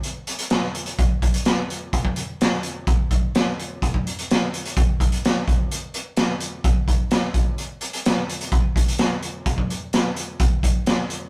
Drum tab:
HH |x-xxx-xxx-xxx-x-|x-x-x-x-x-x-x-x-|x-xxx-xxx-xxx-x-|x-x-x-x-x-x-x-x-|
SD |----oo------o---|----oo------o---|----o-------o---|----o-------o---|
BD |--------o-o-----|oo------o-o-----|oo------o-o---o-|--------o-o---o-|

HH |x-xxx-xxx-xxx-x-|x-x-x-x-x-x-x-x-|
SD |----o-------o---|----o-------o---|
BD |--------o-o-----|oo------o-o-----|